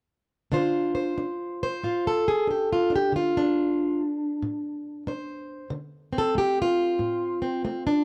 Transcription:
0, 0, Header, 1, 2, 480
1, 0, Start_track
1, 0, Key_signature, -1, "minor"
1, 0, Tempo, 649351
1, 386, Time_signature, 4, 2, 24, 8
1, 5944, End_track
2, 0, Start_track
2, 0, Title_t, "Steel-string acoustic guitar"
2, 0, Program_c, 0, 25
2, 381, Note_on_c, 0, 50, 69
2, 385, Note_on_c, 0, 62, 46
2, 392, Note_on_c, 0, 65, 48
2, 398, Note_on_c, 0, 72, 51
2, 698, Note_off_c, 0, 72, 0
2, 701, Note_on_c, 0, 72, 44
2, 830, Note_off_c, 0, 50, 0
2, 867, Note_off_c, 0, 62, 0
2, 870, Note_on_c, 0, 62, 61
2, 1202, Note_off_c, 0, 72, 0
2, 1205, Note_on_c, 0, 72, 77
2, 1315, Note_off_c, 0, 62, 0
2, 1356, Note_on_c, 0, 45, 54
2, 1358, Note_off_c, 0, 65, 0
2, 1361, Note_on_c, 0, 65, 45
2, 1517, Note_off_c, 0, 72, 0
2, 1532, Note_on_c, 0, 69, 74
2, 1683, Note_off_c, 0, 65, 0
2, 1686, Note_on_c, 0, 68, 71
2, 1799, Note_off_c, 0, 45, 0
2, 1829, Note_on_c, 0, 62, 62
2, 1838, Note_off_c, 0, 68, 0
2, 1853, Note_on_c, 0, 67, 64
2, 2001, Note_off_c, 0, 67, 0
2, 2015, Note_on_c, 0, 65, 68
2, 2135, Note_off_c, 0, 62, 0
2, 2145, Note_on_c, 0, 62, 45
2, 2161, Note_off_c, 0, 69, 0
2, 2163, Note_off_c, 0, 65, 0
2, 2185, Note_on_c, 0, 67, 76
2, 2309, Note_on_c, 0, 50, 72
2, 2328, Note_off_c, 0, 67, 0
2, 2335, Note_on_c, 0, 65, 75
2, 2490, Note_off_c, 0, 62, 0
2, 2493, Note_on_c, 0, 62, 72
2, 2755, Note_off_c, 0, 50, 0
2, 2963, Note_off_c, 0, 65, 0
2, 3271, Note_on_c, 0, 45, 58
2, 3715, Note_off_c, 0, 45, 0
2, 3740, Note_off_c, 0, 62, 0
2, 3749, Note_on_c, 0, 62, 59
2, 3756, Note_on_c, 0, 72, 48
2, 4194, Note_off_c, 0, 62, 0
2, 4216, Note_on_c, 0, 50, 70
2, 4238, Note_off_c, 0, 72, 0
2, 4528, Note_on_c, 0, 60, 41
2, 4570, Note_on_c, 0, 69, 83
2, 4667, Note_off_c, 0, 50, 0
2, 4695, Note_on_c, 0, 57, 58
2, 4713, Note_off_c, 0, 69, 0
2, 4716, Note_on_c, 0, 67, 78
2, 4872, Note_off_c, 0, 67, 0
2, 4892, Note_on_c, 0, 65, 95
2, 5145, Note_off_c, 0, 57, 0
2, 5169, Note_on_c, 0, 45, 58
2, 5475, Note_off_c, 0, 60, 0
2, 5484, Note_on_c, 0, 60, 44
2, 5622, Note_off_c, 0, 45, 0
2, 5644, Note_off_c, 0, 60, 0
2, 5652, Note_on_c, 0, 57, 62
2, 5655, Note_on_c, 0, 60, 45
2, 5812, Note_off_c, 0, 60, 0
2, 5815, Note_on_c, 0, 62, 67
2, 5944, Note_off_c, 0, 57, 0
2, 5944, Note_off_c, 0, 62, 0
2, 5944, Note_off_c, 0, 65, 0
2, 5944, End_track
0, 0, End_of_file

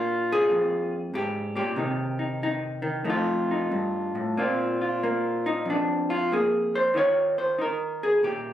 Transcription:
0, 0, Header, 1, 2, 480
1, 0, Start_track
1, 0, Tempo, 625000
1, 1364, Time_signature, 4, 2, 24, 8
1, 1852, Tempo, 660066
1, 3292, Tempo, 638978
1, 6401, End_track
2, 0, Start_track
2, 0, Title_t, "Hollow-body jazz guitar"
2, 0, Program_c, 0, 26
2, 0, Note_on_c, 0, 46, 76
2, 0, Note_on_c, 0, 58, 65
2, 0, Note_on_c, 0, 62, 44
2, 0, Note_on_c, 0, 65, 98
2, 0, Note_on_c, 0, 67, 108
2, 242, Note_off_c, 0, 67, 0
2, 249, Note_on_c, 0, 68, 107
2, 392, Note_on_c, 0, 41, 66
2, 405, Note_off_c, 0, 46, 0
2, 719, Note_off_c, 0, 65, 0
2, 870, Note_off_c, 0, 41, 0
2, 873, Note_on_c, 0, 44, 70
2, 881, Note_off_c, 0, 68, 0
2, 884, Note_on_c, 0, 67, 97
2, 1194, Note_off_c, 0, 67, 0
2, 1194, Note_on_c, 0, 46, 59
2, 1198, Note_off_c, 0, 44, 0
2, 1203, Note_on_c, 0, 67, 94
2, 1339, Note_off_c, 0, 58, 0
2, 1348, Note_off_c, 0, 62, 0
2, 1353, Note_on_c, 0, 48, 73
2, 1360, Note_off_c, 0, 46, 0
2, 1360, Note_on_c, 0, 51, 53
2, 1367, Note_on_c, 0, 63, 42
2, 1673, Note_off_c, 0, 63, 0
2, 1682, Note_on_c, 0, 63, 46
2, 1849, Note_off_c, 0, 63, 0
2, 1867, Note_on_c, 0, 63, 76
2, 2142, Note_off_c, 0, 51, 0
2, 2151, Note_on_c, 0, 51, 61
2, 2300, Note_off_c, 0, 48, 0
2, 2310, Note_off_c, 0, 51, 0
2, 2312, Note_off_c, 0, 63, 0
2, 2312, Note_on_c, 0, 57, 44
2, 2316, Note_on_c, 0, 41, 69
2, 2321, Note_on_c, 0, 63, 46
2, 2325, Note_off_c, 0, 67, 0
2, 2350, Note_on_c, 0, 65, 75
2, 2642, Note_off_c, 0, 63, 0
2, 2651, Note_on_c, 0, 63, 45
2, 2797, Note_off_c, 0, 41, 0
2, 2799, Note_on_c, 0, 43, 59
2, 3113, Note_off_c, 0, 43, 0
2, 3116, Note_on_c, 0, 45, 56
2, 3268, Note_off_c, 0, 57, 0
2, 3276, Note_off_c, 0, 63, 0
2, 3280, Note_on_c, 0, 46, 65
2, 3284, Note_off_c, 0, 45, 0
2, 3285, Note_off_c, 0, 65, 0
2, 3288, Note_on_c, 0, 58, 45
2, 3293, Note_on_c, 0, 60, 41
2, 3293, Note_on_c, 0, 65, 49
2, 3606, Note_off_c, 0, 65, 0
2, 3609, Note_on_c, 0, 65, 44
2, 3772, Note_off_c, 0, 58, 0
2, 3775, Note_on_c, 0, 58, 61
2, 4095, Note_on_c, 0, 63, 74
2, 4240, Note_on_c, 0, 41, 59
2, 4255, Note_off_c, 0, 46, 0
2, 4260, Note_off_c, 0, 63, 0
2, 4274, Note_on_c, 0, 62, 73
2, 4573, Note_off_c, 0, 65, 0
2, 4576, Note_on_c, 0, 65, 85
2, 4589, Note_off_c, 0, 62, 0
2, 4739, Note_off_c, 0, 58, 0
2, 4740, Note_off_c, 0, 65, 0
2, 4742, Note_on_c, 0, 58, 62
2, 4747, Note_off_c, 0, 60, 0
2, 4750, Note_on_c, 0, 68, 71
2, 5066, Note_off_c, 0, 68, 0
2, 5067, Note_on_c, 0, 72, 92
2, 5204, Note_off_c, 0, 58, 0
2, 5207, Note_on_c, 0, 51, 68
2, 5212, Note_off_c, 0, 41, 0
2, 5216, Note_on_c, 0, 63, 48
2, 5221, Note_on_c, 0, 65, 43
2, 5226, Note_off_c, 0, 72, 0
2, 5232, Note_on_c, 0, 73, 94
2, 5536, Note_off_c, 0, 73, 0
2, 5539, Note_on_c, 0, 72, 86
2, 5681, Note_off_c, 0, 63, 0
2, 5690, Note_on_c, 0, 63, 61
2, 5699, Note_off_c, 0, 72, 0
2, 5713, Note_on_c, 0, 70, 78
2, 6022, Note_off_c, 0, 70, 0
2, 6025, Note_off_c, 0, 65, 0
2, 6028, Note_on_c, 0, 68, 96
2, 6176, Note_on_c, 0, 46, 67
2, 6181, Note_off_c, 0, 68, 0
2, 6185, Note_on_c, 0, 67, 77
2, 6401, Note_off_c, 0, 46, 0
2, 6401, Note_off_c, 0, 51, 0
2, 6401, Note_off_c, 0, 63, 0
2, 6401, Note_off_c, 0, 67, 0
2, 6401, End_track
0, 0, End_of_file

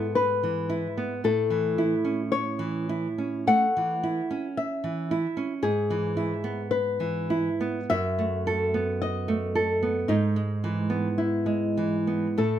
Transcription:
0, 0, Header, 1, 3, 480
1, 0, Start_track
1, 0, Key_signature, 4, "major"
1, 0, Tempo, 1075269
1, 556, Time_signature, 4, 2, 24, 8
1, 1035, Tempo, 1160542
1, 1515, Tempo, 1096892
1, 1995, Tempo, 1067616
1, 2955, Tempo, 1185771
1, 3435, Tempo, 1092896
1, 4875, Tempo, 1202405
1, 5440, End_track
2, 0, Start_track
2, 0, Title_t, "Nylon-string guitar"
2, 0, Program_c, 0, 24
2, 0, Note_on_c, 0, 69, 61
2, 57, Note_off_c, 0, 69, 0
2, 69, Note_on_c, 0, 71, 71
2, 535, Note_off_c, 0, 71, 0
2, 556, Note_on_c, 0, 69, 60
2, 1018, Note_off_c, 0, 69, 0
2, 1034, Note_on_c, 0, 73, 73
2, 1499, Note_off_c, 0, 73, 0
2, 1513, Note_on_c, 0, 78, 79
2, 1977, Note_off_c, 0, 78, 0
2, 1994, Note_on_c, 0, 76, 67
2, 2450, Note_off_c, 0, 76, 0
2, 2468, Note_on_c, 0, 68, 72
2, 2936, Note_off_c, 0, 68, 0
2, 2954, Note_on_c, 0, 71, 74
2, 3418, Note_off_c, 0, 71, 0
2, 3435, Note_on_c, 0, 76, 84
2, 3906, Note_off_c, 0, 76, 0
2, 3926, Note_on_c, 0, 75, 61
2, 4381, Note_off_c, 0, 75, 0
2, 4395, Note_on_c, 0, 63, 70
2, 4857, Note_off_c, 0, 63, 0
2, 4876, Note_on_c, 0, 64, 59
2, 5341, Note_off_c, 0, 64, 0
2, 5357, Note_on_c, 0, 69, 68
2, 5440, Note_off_c, 0, 69, 0
2, 5440, End_track
3, 0, Start_track
3, 0, Title_t, "Nylon-string guitar"
3, 0, Program_c, 1, 24
3, 0, Note_on_c, 1, 44, 49
3, 0, Note_on_c, 1, 59, 47
3, 194, Note_on_c, 1, 52, 40
3, 310, Note_on_c, 1, 64, 51
3, 338, Note_off_c, 1, 59, 0
3, 386, Note_off_c, 1, 52, 0
3, 435, Note_on_c, 1, 59, 49
3, 506, Note_off_c, 1, 64, 0
3, 537, Note_off_c, 1, 44, 0
3, 554, Note_on_c, 1, 45, 62
3, 556, Note_off_c, 1, 59, 0
3, 671, Note_on_c, 1, 52, 47
3, 795, Note_on_c, 1, 64, 48
3, 866, Note_off_c, 1, 52, 0
3, 913, Note_on_c, 1, 61, 45
3, 987, Note_off_c, 1, 64, 0
3, 1148, Note_on_c, 1, 52, 48
3, 1272, Note_on_c, 1, 64, 50
3, 1294, Note_off_c, 1, 61, 0
3, 1344, Note_off_c, 1, 52, 0
3, 1393, Note_on_c, 1, 61, 45
3, 1468, Note_off_c, 1, 64, 0
3, 1498, Note_off_c, 1, 45, 0
3, 1512, Note_on_c, 1, 57, 50
3, 1590, Note_off_c, 1, 61, 0
3, 1641, Note_on_c, 1, 52, 48
3, 1711, Note_off_c, 1, 57, 0
3, 1758, Note_on_c, 1, 64, 54
3, 1832, Note_off_c, 1, 52, 0
3, 1877, Note_on_c, 1, 61, 51
3, 1947, Note_off_c, 1, 64, 0
3, 2112, Note_on_c, 1, 52, 45
3, 2235, Note_on_c, 1, 64, 56
3, 2254, Note_off_c, 1, 61, 0
3, 2302, Note_off_c, 1, 52, 0
3, 2351, Note_on_c, 1, 61, 48
3, 2423, Note_off_c, 1, 64, 0
3, 2467, Note_on_c, 1, 44, 63
3, 2469, Note_off_c, 1, 61, 0
3, 2592, Note_on_c, 1, 52, 48
3, 2710, Note_on_c, 1, 64, 50
3, 2784, Note_off_c, 1, 52, 0
3, 2832, Note_on_c, 1, 59, 51
3, 2906, Note_off_c, 1, 64, 0
3, 3072, Note_on_c, 1, 52, 50
3, 3194, Note_on_c, 1, 64, 54
3, 3218, Note_off_c, 1, 59, 0
3, 3267, Note_off_c, 1, 52, 0
3, 3317, Note_on_c, 1, 59, 52
3, 3388, Note_off_c, 1, 64, 0
3, 3418, Note_off_c, 1, 44, 0
3, 3436, Note_off_c, 1, 59, 0
3, 3436, Note_on_c, 1, 42, 68
3, 3562, Note_on_c, 1, 57, 50
3, 3686, Note_on_c, 1, 69, 53
3, 3757, Note_off_c, 1, 57, 0
3, 3806, Note_on_c, 1, 59, 53
3, 3877, Note_off_c, 1, 69, 0
3, 4043, Note_on_c, 1, 57, 47
3, 4163, Note_on_c, 1, 69, 53
3, 4185, Note_off_c, 1, 59, 0
3, 4232, Note_off_c, 1, 57, 0
3, 4282, Note_on_c, 1, 59, 50
3, 4351, Note_off_c, 1, 69, 0
3, 4380, Note_off_c, 1, 42, 0
3, 4398, Note_on_c, 1, 44, 65
3, 4399, Note_off_c, 1, 59, 0
3, 4517, Note_on_c, 1, 56, 47
3, 4639, Note_on_c, 1, 52, 50
3, 4707, Note_off_c, 1, 56, 0
3, 4753, Note_on_c, 1, 59, 48
3, 4829, Note_off_c, 1, 52, 0
3, 4988, Note_on_c, 1, 56, 46
3, 5114, Note_on_c, 1, 52, 44
3, 5136, Note_off_c, 1, 59, 0
3, 5185, Note_off_c, 1, 56, 0
3, 5233, Note_on_c, 1, 59, 43
3, 5309, Note_off_c, 1, 52, 0
3, 5341, Note_off_c, 1, 44, 0
3, 5354, Note_on_c, 1, 45, 59
3, 5355, Note_off_c, 1, 59, 0
3, 5440, Note_off_c, 1, 45, 0
3, 5440, End_track
0, 0, End_of_file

